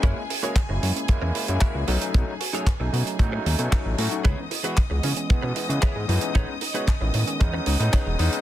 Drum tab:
HH |x-oxx-oxx-oxx-ox|x-oxx-oxx-oxx-ox|x-oxx-oxx-oxx-ox|x-oxx-oxx-oxx-ox|
CP |----x-------x---|----x-------x---|----x-------x---|----x-------x---|
BD |o---o---o---o---|o---o---o---o---|o---o---o---o---|o---o---o---o---|